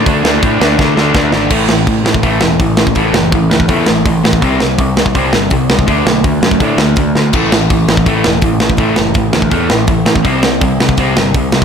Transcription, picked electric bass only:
X:1
M:4/4
L:1/8
Q:1/4=165
K:Dlyd
V:1 name="Picked electric bass" clef=bass
D,, D,, A,, D,, D,, D,, D,, G,,, | A,,,2 A,,, A,,, A,,, E,,, A,,, A,,, | A,,, F,,, A,,, D,, E,, A,,, A,,, A,,, | =C,,2 C,, C,, C,, =G,,, C,, ^C,, |
D,, B,,, D,, F,, A,, D,, D,, D,, | A,,,2 A,,, A,,, A,,, E,,, A,,, A,,, | A,,, F,,, A,,, D,, E,, A,,, A,,, A,,, | =C,,2 C,, C,, C,, =G,,, C,, C,, |]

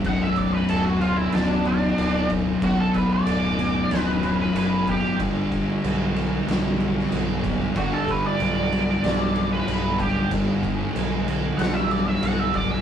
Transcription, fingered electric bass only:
X:1
M:4/4
L:1/8
Q:1/4=94
K:Bm
V:1 name="Fingered electric bass" clef=bass
B,,,,2 D,,,2 D,,,2 D,,,2 | B,,,,2 D,,,2 D,,,2 F,,,2 | G,,,2 B,,,2 B,,,2 B,,,2 | G,,,2 B,,,2 B,,,2 B,,,2 |
G,,,2 B,,,2 B,,,2 B,,,2 |]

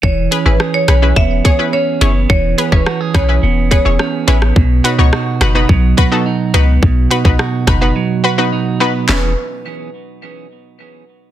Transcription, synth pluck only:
X:1
M:4/4
L:1/16
Q:1/4=106
K:E
V:1 name="Synth pluck"
z2 [GB] [CEGB] z2 [GB] [CEGB] z2 [Gc] [CEGB] z2 [CEGc] z | z2 [GB] [CEGc] z2 [GB] [CEGB] z2 [GB] [CEGc] z2 [CEGB] z | z2 [FB] [B,DFc] z2 [FB] [B,DFB] z2 [FB] [B,DFA] z2 [B,DFB] z | z2 [FB] [B,DFB] z2 [FB] [B,DFB] z2 [FB] [B,DFB] z2 [B,DFB] z |
[CEGB]2 z12 z2 |]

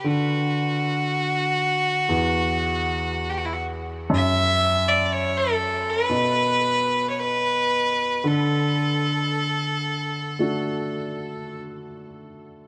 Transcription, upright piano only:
X:1
M:4/4
L:1/8
Q:1/4=58
K:D
V:1 name="Upright piano" clef=bass
D,4 E,,4 | F,,4 B,,4 | D,4 [A,DF]4 |]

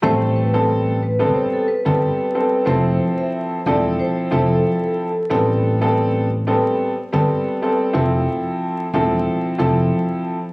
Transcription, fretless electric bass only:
X:1
M:4/4
L:1/16
Q:"Swing 16ths" 1/4=91
K:Am
V:1 name="Fretless electric bass" clef=bass
A,,,8 z3 G,,, z4 | F,,,2 z4 E,,,2 z2 F,,,2 z4 | A,,,8 z3 G,,, z4 | F,,,2 z4 E,,,2 z2 F,,,2 z4 |]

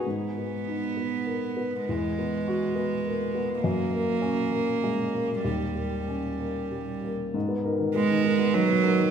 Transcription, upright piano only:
X:1
M:3/4
L:1/16
Q:1/4=99
K:G#m
V:1 name="Upright piano"
G,,2 B,2 D2 B,2 A2 B,2 | E,,2 B,2 F2 B,2 A,2 B,2 | F,,2 A,2 C2 A,2 G,2 A,2 | D,,2 A,2 C2 A,2 =G,2 A,2 |
G,, B, [DA] D, B, D, [DA] B, D, B, [DA] D, |]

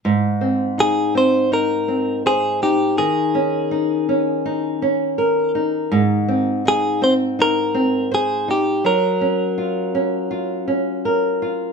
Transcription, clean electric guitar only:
X:1
M:4/4
L:1/8
Q:"Swing 16ths" 1/4=82
K:Ab
V:1 name="Clean electric guitar"
z2 A c B2 A G | A6- A z | z2 A c B2 A G | B6- B z |]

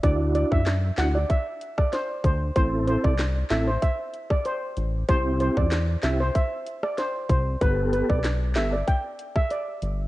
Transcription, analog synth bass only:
X:1
M:4/4
L:1/16
Q:1/4=95
K:Ador
V:1 name="Analog synth bass" clef=bass
D,,3 F,,3 D,,2 z6 D,,2 | A,,,3 C,,3 A,,,2 z6 A,,,2 | C,,3 E,,3 C,,2 z6 C,,2 | G,,,3 B,,,3 G,,,2 z6 G,,,2 |]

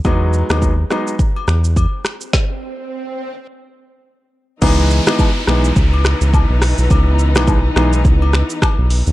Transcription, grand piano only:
X:1
M:4/4
L:1/16
Q:"Swing 16ths" 1/4=105
K:C#m
V:1 name="Grand piano"
[F,G,B,D]3 [F,G,B,D] z2 [F,G,B,D]2 z8 | z16 | [E,G,B,D]3 [E,G,B,D] z2 [E,G,B,D]2 z8 | z3 [E,G,B,D] z2 [E,G,B,D]2 z8 |]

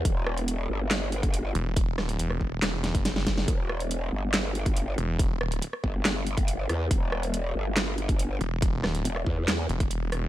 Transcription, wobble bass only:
X:1
M:4/4
L:1/8
Q:1/4=140
K:Em
V:1 name="Wobble bass" clef=bass
E,,,3 G,,,4 z | z8 | E,,,3 G,,,4 z | z3 G,,,4 E,, |
E,,,3 G,,,4 z | z2 E,,, E,,2 z3 |]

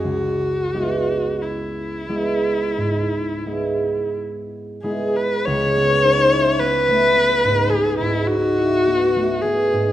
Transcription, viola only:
X:1
M:4/4
L:1/16
Q:1/4=51
K:C#m
V:1 name="Viola"
F4 E8 z2 G B | c4 B4 G E F4 G2 |]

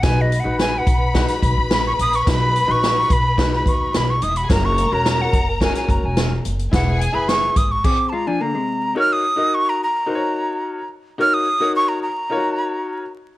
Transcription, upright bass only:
X:1
M:4/4
L:1/16
Q:1/4=108
K:B
V:1 name="Upright bass" clef=bass
B,,,3 A,,,3 B,,,3 z B,,, A,,,3 A,,,2 | B,,,3 A,,,3 B,,,4 D,,2 B,,,2 E,,,2 | F,,,3 E,,,3 F,,,3 z F,,, E,,,3 F,,,2 | E,,,3 F,,,3 G,,,2 z8 |
[K:Ebdor] z16 | z16 |]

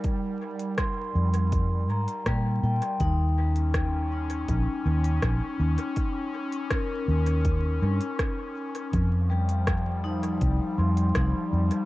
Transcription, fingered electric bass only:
X:1
M:4/4
L:1/8
Q:1/4=81
K:Ebmix
V:1 name="Fingered electric bass" clef=bass
z3 F,,2 A,, B,, B,, | E,,4 B,,, E,, B,,, E,, | z3 E,,2 G,, z2 | F,,4 C,, F,, C,, F,, |]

